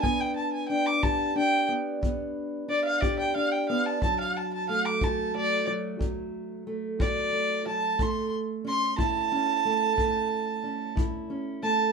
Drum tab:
BD |o--o--o--o--|o--o--o--o--|o--o--o--o--|